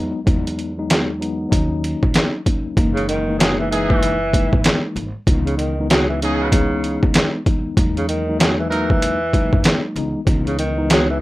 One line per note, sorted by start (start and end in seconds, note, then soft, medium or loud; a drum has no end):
0.00 0.11 E2 loud
0.00 0.18 E2 medium
0.00 0.19 F#3 medium
0.00 0.19 G#3 medium
0.00 0.19 B3 medium
0.00 0.20 D#4 loud
0.24 0.72 E2 medium
0.24 1.48 E2 loud
0.24 0.72 F#3 medium
0.24 0.72 G#3 medium
0.24 0.72 B3 medium
0.24 0.73 D#4 loud
0.24 kick loud
0.24 closed hi-hat medium
0.47 closed hi-hat medium
0.59 closed hi-hat medium
0.77 1.18 E2 loud
0.77 1.18 F#3 medium
0.77 1.18 G#3 medium
0.77 1.18 B3 medium
0.77 1.19 D#4 loud
0.90 snare loud
0.90 clap medium
0.90 closed hi-hat loud
1.19 1.49 E2 medium
1.19 1.48 F#3 medium
1.19 1.50 G#3 medium
1.19 1.50 B3 medium
1.19 1.50 D#4 loud
1.19 closed hi-hat medium
1.49 1.93 D#2 loud
1.49 2.39 F#3 medium
1.49 2.39 A#3 medium
1.49 2.39 C#4 medium
1.49 2.40 D#4 loud
1.49 kick loud
1.49 closed hi-hat medium
1.84 closed hi-hat medium
2.03 2.12 A#1 loud
2.03 kick medium
2.14 snare loud
2.14 clap medium
2.14 closed hi-hat medium
2.45 2.75 F#3 medium
2.45 2.75 A#3 medium
2.45 2.75 C#4 medium
2.45 2.76 D#4 medium
2.45 kick medium
2.45 closed hi-hat medium
2.76 4.49 F#1 loud
2.76 3.23 E3 medium
2.76 3.23 G#3 medium
2.76 3.24 A#3 medium
2.76 3.24 D#4 loud
2.76 kick loud
2.76 closed hi-hat medium
2.94 3.06 C#3 medium
2.94 closed hi-hat medium
3.08 3.36 D#3 medium
3.08 closed hi-hat medium
3.27 3.68 E3 medium
3.27 3.68 G#3 medium
3.27 3.68 A#3 medium
3.27 3.69 D#4 loud
3.39 3.57 F#3 medium
3.39 3.55 D#4 medium
3.39 3.55 G#4 loud
3.39 snare loud
3.39 clap medium
3.39 closed hi-hat loud
3.59 3.69 E3 medium
3.70 4.16 E3 medium
3.70 4.80 E3 loud
3.70 4.17 G#3 medium
3.70 4.17 A#3 medium
3.70 4.14 D#4 loud
3.70 4.17 D#4 loud
3.70 4.14 G#4 loud
3.70 closed hi-hat medium
3.90 kick loud
4.03 closed hi-hat medium
4.32 5.07 E3 medium
4.32 5.07 G#3 medium
4.32 5.08 A#3 medium
4.32 5.08 D#4 loud
4.32 kick medium
4.32 closed hi-hat medium
4.53 4.62 G#1 medium
4.53 kick medium
4.64 snare loud
4.64 clap medium
4.64 closed hi-hat medium
4.96 5.11 G#1 loud
4.96 closed hi-hat medium
5.27 6.99 C#2 loud
5.27 5.73 E3 medium
5.27 5.74 G#3 medium
5.27 5.74 B3 medium
5.27 5.74 D#4 loud
5.27 kick loud
5.27 closed hi-hat medium
5.45 5.56 C#3 medium
5.45 closed hi-hat medium
5.57 5.86 D#3 medium
5.57 closed hi-hat medium
5.78 6.18 E3 medium
5.78 6.19 G#3 medium
5.78 6.19 B3 medium
5.78 6.19 D#4 loud
5.89 6.07 F#3 medium
5.89 6.05 D#4 medium
5.89 6.05 G#4 loud
5.89 snare loud
5.89 clap medium
5.89 closed hi-hat loud
6.08 6.19 E3 medium
6.21 7.11 C#3 medium
6.21 6.48 E3 medium
6.21 6.49 G#3 medium
6.21 6.50 B3 medium
6.21 6.48 D#4 loud
6.21 6.50 D#4 loud
6.21 6.48 G#4 loud
6.21 closed hi-hat medium
6.50 7.39 E3 loud
6.50 7.39 G#3 medium
6.50 7.40 B3 medium
6.50 7.40 D#4 loud
6.50 kick loud
6.50 closed hi-hat medium
6.84 closed hi-hat medium
7.03 7.12 C#2 medium
7.03 kick medium
7.14 snare loud
7.14 clap medium
7.14 closed hi-hat loud
7.44 7.74 E3 medium
7.44 7.75 G#3 medium
7.44 7.75 B3 medium
7.44 7.75 D#4 medium
7.44 kick loud
7.44 closed hi-hat medium
7.76 9.49 E2 loud
7.76 8.23 F#3 medium
7.76 8.23 G#3 medium
7.76 8.23 A#3 medium
7.76 8.24 D#4 loud
7.76 kick loud
7.76 closed hi-hat medium
7.97 8.07 C#3 medium
7.97 closed hi-hat medium
8.08 8.36 D#3 medium
8.08 closed hi-hat medium
8.27 8.67 F#3 medium
8.27 8.68 G#3 medium
8.27 8.68 A#3 medium
8.27 8.69 D#4 loud
8.38 8.57 F#3 medium
8.38 8.54 B3 medium
8.38 8.54 G#4 medium
8.38 snare loud
8.38 clap medium
8.38 closed hi-hat loud
8.59 8.69 E3 medium
8.69 9.80 E3 medium
8.69 8.89 F#3 medium
8.69 9.17 F#3 medium
8.69 9.17 G#3 medium
8.69 9.17 A#3 medium
8.69 8.89 D#4 loud
8.69 9.18 D#4 loud
8.69 8.89 A#4 loud
8.69 closed hi-hat medium
8.90 kick loud
9.02 closed hi-hat medium
9.33 9.95 F#3 medium
9.33 9.96 G#3 medium
9.33 9.96 A#3 medium
9.33 9.97 D#4 loud
9.33 kick loud
9.33 closed hi-hat medium
9.53 9.62 F#2 medium
9.53 kick medium
9.64 snare loud
9.64 clap medium
9.64 closed hi-hat medium
9.96 10.11 C#2 loud
9.96 10.19 E3 loud
9.96 10.19 G#3 medium
9.96 10.20 B3 medium
9.96 10.20 D#4 loud
9.96 closed hi-hat medium
10.25 11.21 C#2 loud
10.25 10.72 E3 medium
10.25 10.73 G#3 medium
10.25 10.73 B3 medium
10.25 10.73 D#4 loud
10.25 kick loud
10.25 closed hi-hat medium
10.46 10.57 C#3 medium
10.46 closed hi-hat medium
10.59 10.87 D#3 medium
10.59 closed hi-hat medium
10.76 11.17 E3 loud
10.76 11.17 G#3 medium
10.76 11.18 B3 medium
10.76 11.18 D#4 loud
10.89 11.08 F#3 medium
10.89 11.05 D#4 medium
10.89 11.05 G#4 medium
10.89 snare loud
10.89 clap medium
10.89 closed hi-hat loud
11.10 11.19 E3 medium